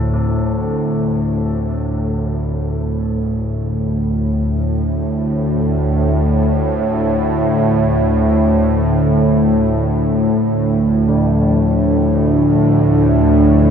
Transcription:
0.00 13.71 D2 medium
0.00 13.71 A2 medium
0.00 0.29 D3 medium
0.00 6.11 A4 soft
0.13 6.35 A3 medium
10.33 13.71 D4 medium
10.52 13.71 A4 medium
10.90 13.71 E5 medium
11.09 13.71 D3 medium
12.68 13.71 F5 medium

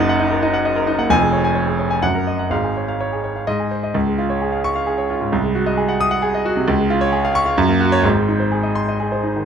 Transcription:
0.00 1.06 F#1 loud
0.00 1.07 F#2 loud
0.00 0.16 D#4 medium
0.00 0.31 A#4 medium
0.00 0.16 D#5 medium
0.00 0.09 F#5 loud
0.09 0.27 F#5 loud
0.20 0.38 D#4 medium
0.20 0.38 D#5 medium
0.31 0.49 A#4 medium
0.42 0.61 D#4 medium
0.42 0.61 D#5 medium
0.54 0.72 F#5 medium
0.65 0.83 D#5 medium
0.76 0.94 A#4 medium
0.87 1.06 D#4 medium
0.87 1.05 D#5 medium
0.99 1.10 A#3 medium
0.99 1.10 F#5 medium
1.09 1.99 F1 loud
1.09 1.99 F2 loud
1.09 1.28 G#5 loud
1.21 1.40 G#4 medium
1.33 1.51 C#5 medium
1.44 1.63 G#5 medium
1.55 1.74 C#5 medium
1.67 1.86 G#4 medium
1.79 1.98 C#5 medium
1.90 2.02 G#5 medium
2.02 2.49 F#2 medium
2.02 2.21 F#5 loud
2.15 2.34 A#4 medium
2.27 2.46 D#5 medium
2.39 2.51 F#5 medium
2.50 3.44 G#1 medium
2.50 3.45 G#2 medium
2.50 2.70 F5 medium
2.64 2.83 G#4 medium
2.77 2.95 C#5 medium
2.88 3.07 F5 medium
3.01 3.19 C#5 medium
3.13 3.31 G#4 medium
3.24 3.43 C#5 medium
3.36 3.47 F5 medium
3.47 3.93 G#2 medium
3.47 3.66 D#5 loud
3.60 3.79 G#4 medium
3.71 3.90 C5 medium
3.83 3.95 D#5 medium
3.94 5.29 C#2 loud
4.07 4.25 G#3 medium
4.18 4.36 F4 medium
4.30 4.48 C#5 medium
4.41 4.60 G#4 medium
4.52 4.71 F5 medium
4.64 4.83 C#6 loud
4.76 4.94 F5 medium
4.87 5.05 G#4 medium
4.98 5.17 C#5 medium
5.10 5.28 F4 medium
5.21 5.33 G#2 medium
5.32 6.63 C2 loud
5.44 5.62 G#3 medium
5.55 5.73 F#4 medium
5.66 5.84 D#5 medium
5.77 5.96 G#4 medium
5.89 6.07 F#5 medium
6.01 6.18 D#6 loud
6.11 6.29 F#5 medium
6.22 6.40 G#4 loud
6.34 6.52 D#5 medium
6.46 6.63 F#4 loud
6.57 6.68 C3 medium
6.68 7.55 C#2 loud
6.78 6.96 G#3 medium
6.90 7.08 F4 medium
7.01 7.19 C#5 loud
7.12 7.30 G#4 medium
7.25 7.42 F5 loud
7.35 7.53 C#6 loud
7.46 7.57 F5 medium
7.58 8.03 F#2 loud
7.69 7.88 A#3 medium
7.80 7.99 F#4 medium
7.92 8.04 C#5 loud
8.03 9.42 G#1 medium
8.03 9.43 G#2 loud
8.16 8.35 G#3 medium
8.28 8.47 D#4 medium
8.40 8.59 C5 medium
8.52 8.71 G#4 medium
8.63 8.83 D#5 medium
8.75 8.95 C6 loud
8.88 9.07 D#5 medium
9.00 9.19 G#4 medium
9.12 9.31 C5 medium
9.23 9.42 D#4 medium
9.36 9.45 D#3 medium

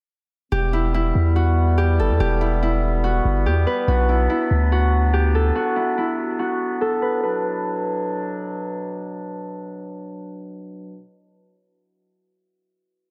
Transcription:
0.52 1.13 E1 loud
0.52 3.84 E3 medium
0.52 3.84 G3 medium
0.52 7.19 B3 medium
0.52 1.42 G4 medium
0.73 0.94 E4 medium
0.94 2.41 E4 medium
1.15 2.01 E2 loud
1.36 1.84 F#4 medium
1.78 2.20 G4 medium
1.99 2.11 G1 loud
1.99 4.19 A4 medium
2.10 2.19 E2 medium
2.20 3.21 E1 loud
2.20 3.10 G4 loud
2.41 2.62 E4 medium
2.63 4.09 E4 medium
3.04 3.52 F#4 medium
3.25 3.47 G1 loud
3.46 3.66 E2 loud
3.46 3.94 G4 medium
3.67 5.72 B4 medium
3.88 4.28 B1 loud
3.88 7.20 F#3 medium
3.88 7.20 D4 medium
3.88 4.72 F#4 medium
4.09 4.29 E4 medium
4.30 5.76 E4 medium
4.51 5.52 D2 loud
4.72 5.20 F#4 medium
5.13 5.62 G4 medium
5.35 6.81 A4 medium
5.56 6.39 F#4 loud
5.76 5.97 E4 medium
5.98 8.59 E4 medium
6.39 8.83 F#4 medium
6.81 9.01 A4 medium
7.02 7.23 B4 medium
7.23 11.00 B2 medium
7.23 11.00 F#3 medium
7.23 11.00 D4 medium
7.23 9.28 B4 medium

